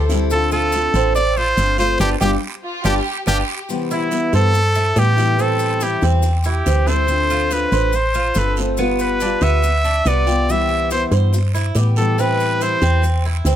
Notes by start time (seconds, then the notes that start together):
Already playing: D2 A4 C5
0.09 G3 C4 E4, short guiro, maracas
0.30 D3 A3 C4 F4 A4, long guiro, maracas
0.51 F4 A4, maracas
0.72 D3 A3 C4 F4, short guiro, maracas
0.93 A1 C4, short guiro, maracas
1.15 D5, muted steel-string acoustic guitar stroke, long guiro, maracas
1.37 F4 C5
1.57 G1 D3 A3 C4 F4, short guiro, maracas
1.78 A3 C4 F4 C5, short guiro, maracas
1.99 G1 G3 B3 D4 F4 G4, long guiro, maracas
2.20 G1 G3 B3 D4 F4 G4, long guiro, maracas
2.64 F4
2.84 G1 G3 B3 D4 F4 G4, long guiro, maracas
3.26 G1 G3 B3 D4 F4 G4, long guiro, maracas
3.69 C3 E3 G3 B3 E4, long guiro, maracas
3.91 E4, maracas
4.10 E3 G3 B3 E4, short guiro, maracas
4.33 G2 A4 C5, short guiro, maracas
4.53 muted steel-string acoustic guitar stroke, long guiro, maracas
4.75 E4, maracas
4.96 A2 E3 G3 B3 E4 G4, short guiro, maracas
5.17 E3 G3 B3 E4, short guiro, maracas
5.37 E3 G3 C4 E4, long guiro, maracas
5.41 A4
5.59 maracas
5.81 E3 G3 C4 E4 G4, short guiro, maracas
6.01 E2 C4, short guiro, maracas
6.22 muted steel-string acoustic guitar stroke, long guiro, maracas
6.44 E4 G4, maracas
6.65 D2 E3 G3 C4 E4, short guiro, maracas
6.86 G3 C4 E4 A4 C5, short guiro, maracas
7.07 D3 A3 C4 F4, long guiro, maracas
7.30 F4, maracas
7.50 D3 A3 C4 F4 B4, short guiro, maracas
7.72 A1 C5, short guiro, maracas
7.93 C5, muted steel-string acoustic guitar stroke, long guiro, maracas
8.14 F4, maracas
8.35 G1 D3 A3 C4 F4 A4 B4, short guiro, maracas
8.56 A3 C4 F4, short guiro, maracas
8.77 G3 B3 F4, long guiro, maracas
8.99 B4, maracas
9.20 G3 B3 D4, short guiro, maracas
9.25 F4
9.41 D2 B3 E5, short guiro, maracas
9.62 muted steel-string acoustic guitar stroke, long guiro, maracas
9.85 D4, maracas
10.05 C2 G3 B3 F4 D5, short guiro, maracas
10.26 B3 F4 G4, short guiro, maracas
10.48 C3 E3 G3 B3 E4 E5, long guiro, maracas
10.69 E4
10.91 E3 G3 B3 E4 C5, short guiro, maracas
11.11 G2 C5, short guiro, maracas
11.33 muted steel-string acoustic guitar stroke, long guiro, maracas
11.54 E4, maracas
11.75 A2 E3 G3 B3 E4 G4, short guiro, maracas
11.96 E3 G3 B3 E4 A4, short guiro, maracas
12.18 E3 G3 C4 E4 B4, long guiro, maracas
12.40 maracas
12.60 E3 G3 C4 E4 C5, short guiro, maracas
12.82 E2 C4, short guiro, maracas
13.02 muted steel-string acoustic guitar stroke, long guiro, maracas
13.25 E4
13.45 D2 E3 G3 C4 E4, short guiro, maracas